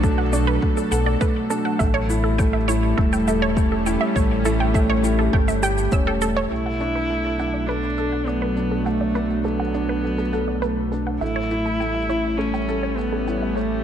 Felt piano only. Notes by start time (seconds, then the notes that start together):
Already playing: A3 D4 A4
0.03 A3
0.32 D4
0.62 A3
0.91 A4
1.21 A3
1.50 D4
1.80 A3
2.10 E4
2.39 A3
2.68 E4
2.98 A3
3.28 A4
3.57 A3
3.87 E4
4.16 A3
4.45 E4
4.74 A3
5.03 E4
5.33 A3
5.63 G4
5.92 C#4
6.22 A3
6.51 A3
6.80 D4
7.10 A3
7.39 D4
7.68 A3
7.98 A4
8.27 A3
8.57 D4
8.86 A3
9.15 D4
9.44 A3
9.74 D4
10.03 A3
10.33 A4
10.62 A3
10.92 D4
11.21 A3
11.51 E4
11.80 A3
12.10 E4
12.39 A3
12.68 A4
12.98 A3
13.27 E4
13.57 A3